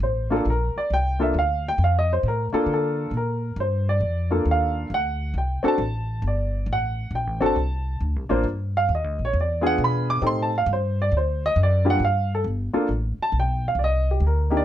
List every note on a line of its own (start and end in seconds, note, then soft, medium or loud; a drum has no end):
0.00 0.44 A1 medium
0.00 0.31 C5 medium
0.30 0.44 A#3 medium
0.30 0.44 D4 medium
0.30 0.44 F4 medium
0.30 0.35 A4 medium
0.37 0.48 A4 medium
0.45 0.74 A#1 medium
0.50 0.77 A#4 medium
0.76 0.91 D5 medium
0.76 muted upright bass stroke soft
0.90 1.33 C2 medium
0.90 1.21 G5 loud
1.19 1.33 A#3 medium
1.19 1.33 D4 medium
1.19 1.33 F4 medium
1.19 1.33 A4 medium
1.19 1.35 E5 medium
1.34 1.77 D2 medium
1.39 1.66 F5 medium
1.68 1.81 G5 loud
1.78 2.22 F2 medium
1.84 1.96 F5 medium
1.99 2.11 D#5 medium
2.13 2.25 C5 medium
2.23 2.51 A2 medium
2.28 2.45 A#4 medium
2.53 3.09 A#3 medium
2.53 3.09 D4 medium
2.53 3.10 F4 medium
2.53 2.72 A4 medium
2.53 muted upright bass stroke soft
2.66 3.10 D3 medium
2.74 3.12 A4 medium
3.11 3.55 A#2 medium
3.17 3.56 A#4 medium
3.56 4.00 G2 medium
3.56 3.88 C5 medium
3.89 4.43 D5 medium
4.00 4.44 F2 medium
4.31 4.87 A#3 medium
4.31 4.87 D4 medium
4.31 4.87 F4 medium
4.31 4.87 A4 medium
4.45 4.89 D#2 medium
4.51 4.90 F5 medium
4.90 5.33 D2 medium
4.94 5.34 F#5 medium
5.34 5.62 C2 medium
5.38 5.65 G5 medium
5.63 5.77 C4 medium
5.63 5.77 D4 medium
5.63 5.77 F#4 medium
5.63 5.77 A4 loud
5.63 muted upright bass stroke soft
5.68 6.21 A5 medium
5.78 6.21 A1 medium
6.22 6.66 G1 medium
6.28 6.67 D5 medium
6.66 7.10 A1 medium
6.73 7.12 F#5 medium
7.11 7.27 A#1 medium
7.15 7.43 G5 medium
7.27 7.40 A1 medium
7.41 7.55 F#1 medium
7.41 7.54 C4 medium
7.41 7.54 D4 medium
7.41 7.54 F#4 medium
7.41 7.55 A4 medium
7.46 7.99 A5 medium
7.56 7.99 C2 medium
8.01 8.16 D2 medium
8.16 8.29 C2 medium
8.29 8.43 A1 medium
8.29 8.43 A#3 medium
8.29 8.43 D4 medium
8.29 8.43 F4 medium
8.29 8.44 C5 medium
8.43 8.87 G2 medium
8.77 8.90 F5 medium
8.89 9.04 D#2 medium
8.95 9.21 D#5 medium
9.04 9.18 D2 medium
9.19 9.33 A#1 medium
9.25 9.36 C#5 medium
9.33 9.77 E2 medium
9.41 9.66 D5 medium
9.61 10.18 B3 medium
9.61 10.18 D4 medium
9.61 10.19 F4 medium
9.61 10.19 G#4 medium
9.67 9.79 F#5 loud
9.78 10.21 B2 medium
9.84 10.10 B5 medium
10.10 10.23 D6 loud
10.22 10.65 A2 medium
10.22 10.49 C4 medium
10.22 10.49 D#4 medium
10.22 10.49 G4 medium
10.22 10.50 A4 medium
10.27 10.39 C6 loud
10.42 10.54 A5 medium
10.58 10.69 F5 medium
10.66 11.09 G2 loud
10.73 10.99 C5 medium
11.02 11.13 D5 medium
11.12 11.54 D2 medium
11.17 11.43 C5 medium
11.46 11.57 D#5 loud
11.56 11.99 F#2 medium
11.63 11.88 D5 medium
11.85 11.98 G2 medium
11.85 11.98 A#3 medium
11.85 11.98 D4 medium
11.85 11.98 F4 medium
11.85 11.98 G4 medium
11.90 12.02 F#5 loud
12.00 12.43 G2 medium
12.05 12.31 F5 medium
12.35 12.42 A4 medium
12.44 12.72 G1 medium
12.73 12.87 A#3 medium
12.73 12.87 D4 medium
12.73 12.87 F4 medium
12.73 12.87 A4 medium
12.73 muted upright bass stroke soft
12.89 13.16 A1 medium
13.18 muted upright bass stroke soft
13.22 13.34 A5 medium
13.32 13.74 B1 medium
13.40 13.65 G5 medium
13.68 13.79 F5 medium
13.75 14.19 C2 medium
13.75 13.81 D5 medium
13.84 14.10 D#5 medium
14.11 14.23 G4 medium
14.20 14.64 D2 medium
14.27 14.53 A#4 medium
14.50 14.64 A#3 medium
14.50 14.64 D4 medium
14.50 14.64 D#4 medium
14.50 14.64 G4 medium
14.57 14.65 D5 medium